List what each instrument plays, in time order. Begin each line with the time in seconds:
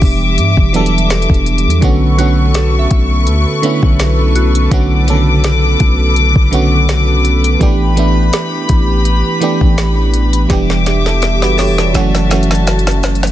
Already playing: fm electric piano E3 G3 B3 D4 G4, string section G3 E5 D6
0.02 808-style bass E1, kick, open hi-hat
0.38 808-style bass G2, closed hi-hat
0.57 808-style bass E1, kick
0.73 fm electric piano E3 F#3 B3 D4 A4, closed hi-hat
0.80 fm electric piano G3
0.86 closed hi-hat
0.98 closed hi-hat
1.10 snare, closed hi-hat
1.22 closed hi-hat
1.30 808-style bass E1, kick
1.34 closed hi-hat
1.46 closed hi-hat
1.58 closed hi-hat
1.66 808-style bass E2
1.70 closed hi-hat
1.81 808-style bass B1, fm electric piano D3 A3 B3 C#4 F#4, string section A4 B4 C#6, kick, closed hi-hat
2.18 fm electric piano D3 A3 B3 C#4 F#4, synth bell F#4, closed hi-hat
2.54 synth bell A4, snare, closed hi-hat
2.79 synth bell E5
2.91 808-style bass B1, kick, closed hi-hat
3.27 808-style bass D2, closed hi-hat
3.62 fm electric piano D3 A3 B3 C#4 E4, synth bell B4, closed hi-hat
3.83 808-style bass B1, kick
3.99 snare, closed hi-hat
4.35 synth bell F#4, closed hi-hat, open hi-hat
4.55 closed hi-hat
4.71 808-style bass B1, fm electric piano D3 A3 B3 C#4 F#4, string section D6, kick, closed hi-hat
5.07 fm electric piano C#3 A3 B3 C#4 A4, closed hi-hat
5.13 fm electric piano D3
5.44 snare, closed hi-hat
5.80 808-style bass B1, kick, closed hi-hat
6.16 closed hi-hat
6.36 808-style bass B1, kick
6.51 fm electric piano D3 A3 B3 C#4 F#4, closed hi-hat
6.89 snare, closed hi-hat
7.25 closed hi-hat, open hi-hat
7.44 closed hi-hat
7.60 808-style bass A1, fm electric piano E3 A3 B3 D4 G4, string section G4 B5, kick, closed hi-hat
7.96 fm electric piano E3 A3 B3 D4 E4, closed hi-hat
8.33 snare, closed hi-hat
8.69 808-style bass A1, kick, closed hi-hat
9.05 closed hi-hat
9.40 fm electric piano E3 A3 B3 D4 G4, closed hi-hat
9.61 808-style bass A1, kick
9.78 snare, closed hi-hat
10.13 closed hi-hat, open hi-hat
10.33 closed hi-hat
10.49 808-style bass E1, fm electric piano E3 G3 B3 D4 G4, string section G4 E5 D6, kick, snare, closed hi-hat
10.70 snare
10.86 fm electric piano D4 G4, snare, closed hi-hat
11.06 fm electric piano E4 A4, snare
11.22 snare, closed hi-hat
11.42 808-style bass F#1, fm electric piano F#4 B4, snare
11.58 fm electric piano G4 C#5, synth bell A4, snare, open hi-hat
11.68 808-style bass E1
11.78 fm electric piano A4 D5, snare
11.94 808-style bass F#1, fm electric piano E3 F#3 A3 C#4 F#4, string section F#4 A5, snare, closed hi-hat
12.15 snare
12.29 fm electric piano E3 F#3 A3 C#4 F#4, snare, closed hi-hat
12.43 closed hi-hat
12.51 snare
12.55 closed hi-hat
12.67 snare, closed hi-hat
12.79 closed hi-hat
12.87 snare
12.91 closed hi-hat
13.03 snare, closed hi-hat
13.15 closed hi-hat
13.23 snare, closed hi-hat